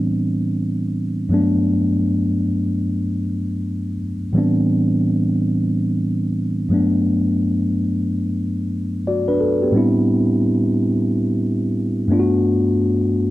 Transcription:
0.00 1.26 A2 medium
0.00 1.26 E3 medium
0.00 1.27 G3 medium
0.00 1.27 B3 soft
0.00 1.28 C4 medium
0.00 1.28 D4 medium
1.29 3.95 G2 medium
1.29 3.96 F#3 medium
1.29 3.97 A3 medium
1.29 3.97 B3 medium
1.34 3.98 D4 medium
4.33 6.65 A2 medium
4.33 6.66 E3 medium
4.33 6.66 G3 medium
4.33 6.67 B3 medium
4.37 6.67 C4 medium
4.37 6.68 D4 medium
6.69 9.35 G2 medium
6.69 9.36 F#3 medium
6.69 9.36 A3 medium
6.69 9.03 B3 medium
6.74 9.04 D4 medium
9.07 9.27 F#4 soft
9.07 9.27 D5 medium
9.28 9.40 D4 soft
9.28 9.39 B4 medium
9.40 9.60 A4 medium
9.62 9.73 B3 soft
9.62 9.93 G4 soft
9.72 12.04 A2 medium
9.72 12.05 G3 medium
9.72 12.05 B3 medium
9.72 12.06 C4 medium
9.76 12.06 D4 medium
9.76 12.07 E4 medium
12.08 13.30 G2 medium
12.08 13.30 A3 medium
12.08 13.30 B3 medium
12.08 13.30 D4 medium
12.13 12.19 F4 medium
12.20 13.30 F#4 medium

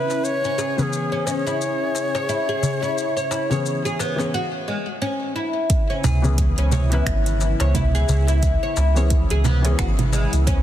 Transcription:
0.00 4.29 C#3 medium
0.00 0.72 E3 medium
0.00 0.73 B3 medium
0.00 0.73 C#4 medium
0.00 4.29 C#4 medium
0.00 0.24 E4 medium
0.00 0.42 E4 medium
0.00 0.74 G#4 medium
0.00 0.26 B4 medium
0.10 darbuka tek medium
0.10 shaker soft
0.24 4.34 G#4 medium
0.24 0.80 C#5 loud
0.24 shaker soft
0.44 0.58 C#4 medium
0.44 shaker soft
0.58 0.77 G#4 medium
0.58 darbuka tek medium
0.58 shaker medium
0.77 1.41 E3 medium
0.77 1.41 B3 medium
0.77 1.42 C#4 medium
0.77 1.42 G#4 medium
0.77 0.84 B4 medium
0.77 darbuka dum medium
0.77 shaker soft
0.83 1.28 G#4 medium
0.93 shaker soft
1.12 1.25 C#4 medium
1.27 1.45 C#4 medium
1.27 1.33 E5 medium
1.27 darbuka tek medium
1.27 shaker medium
1.32 4.33 C#5 medium
1.47 2.13 E4 medium
1.47 darbuka ka medium
1.47 shaker soft
1.61 shaker soft
1.95 darbuka tek medium
1.95 shaker medium
2.15 2.28 C#5 medium
2.15 darbuka tek medium
2.15 shaker soft
2.29 2.48 E4 medium
2.29 shaker soft
2.49 2.81 G#4 medium
2.63 darbuka ka soft
2.63 darbuka tek soft
2.63 darbuka dum medium
2.63 shaker medium
2.82 3.15 E4 medium
2.82 darbuka ka medium
2.82 shaker soft
2.98 shaker soft
3.17 3.30 C#5 medium
3.17 shaker soft
3.31 3.50 E4 medium
3.31 darbuka ka soft
3.31 darbuka tek medium
3.31 shaker medium
3.50 4.14 E3 medium
3.50 4.14 B3 medium
3.50 4.14 C#4 medium
3.50 4.15 G#4 medium
3.50 3.64 C#5 medium
3.50 darbuka dum medium
3.50 shaker soft
3.66 shaker soft
3.85 3.98 G#4 medium
3.85 shaker soft
3.99 4.18 B3 medium
3.99 darbuka tek medium
3.99 shaker medium
4.16 4.32 E3 medium
4.16 4.33 B3 medium
4.16 4.33 C#4 medium
4.16 darbuka ka medium
4.16 shaker soft
4.20 4.34 G#4 medium
4.34 4.45 F#4 loud
4.68 4.86 G#3 medium
5.02 5.34 C#4 medium
5.36 5.70 E4 medium
5.70 10.63 C#3 medium
5.70 10.63 B3 medium
5.70 10.63 E4 medium
5.70 kick loud
5.70 closed hi-hat medium
5.70 shaker soft
5.90 6.03 C#4 medium
6.04 6.52 C#2 medium
6.04 6.23 G#4 medium
6.04 darbuka tek medium
6.04 low conga medium
6.04 shaker medium
6.22 6.86 E3 medium
6.22 6.87 B3 medium
6.22 6.87 C#4 medium
6.22 6.87 G#4 loud
6.22 darbuka dum medium
6.22 shaker soft
6.38 kick loud
6.38 closed hi-hat medium
6.38 shaker soft
6.57 7.02 C#2 medium
6.57 6.71 C#4 medium
6.57 closed hi-hat soft
6.72 6.91 C#4 medium
6.72 darbuka tek medium
6.72 low conga medium
6.72 shaker medium
6.90 8.91 E3 medium
6.90 8.92 B3 medium
6.90 8.92 C#4 medium
6.90 7.59 E4 medium
6.90 8.93 B4 loud
6.90 closed hi-hat soft
6.90 darbuka ka medium
6.90 shaker soft
7.06 7.54 G#1 loud
7.06 finger snap medium
7.06 kick loud
7.06 closed hi-hat medium
7.06 shaker soft
7.26 closed hi-hat soft
7.26 shaker soft
7.41 darbuka tek medium
7.41 shaker medium
7.60 8.04 C#2 medium
7.60 7.74 C#5 medium
7.60 closed hi-hat soft
7.60 darbuka tek medium
7.60 shaker soft
7.75 7.93 E4 loud
7.75 kick loud
7.75 closed hi-hat medium
7.75 low conga medium
7.75 shaker soft
7.95 8.27 G#4 loud
7.95 shaker soft
8.08 8.56 C#2 medium
8.08 darbuka ka soft
8.08 darbuka tek soft
8.08 darbuka dum medium
8.08 shaker medium
8.27 8.61 E4 medium
8.27 closed hi-hat soft
8.27 darbuka ka medium
8.27 shaker soft
8.43 kick loud
8.43 closed hi-hat medium
8.43 shaker soft
8.63 8.76 C#5 medium
8.77 9.25 C#2 medium
8.77 8.96 E4 medium
8.77 darbuka tek medium
8.77 shaker medium
8.95 9.59 E3 medium
8.95 9.60 B3 medium
8.95 9.60 C#4 medium
8.95 9.60 G#4 medium
8.95 9.10 C#5 medium
8.95 shaker soft
9.10 kick loud
9.10 closed hi-hat medium
9.10 shaker soft
9.30 9.75 C#2 medium
9.30 9.44 G#4 loud
9.30 closed hi-hat soft
9.44 9.64 B3 loud
9.44 darbuka tek medium
9.44 low conga medium
9.44 shaker medium
9.62 10.63 E3 medium
9.62 10.63 B3 medium
9.62 9.78 C#4 medium
9.62 10.63 C#4 medium
9.62 closed hi-hat soft
9.62 darbuka ka medium
9.62 shaker soft
9.66 10.63 G#4 loud
9.79 10.27 G#1 loud
9.79 9.90 F#4 loud
9.79 finger snap medium
9.79 kick loud
9.79 closed hi-hat medium
9.79 shaker soft
9.99 closed hi-hat soft
9.99 low conga medium
9.99 shaker soft
10.13 10.32 G#3 medium
10.13 darbuka ka soft
10.13 darbuka tek medium
10.13 shaker medium
10.33 10.63 C#2 medium
10.33 closed hi-hat soft
10.33 shaker soft
10.47 10.63 C#4 loud
10.47 kick loud
10.47 closed hi-hat medium
10.47 shaker soft

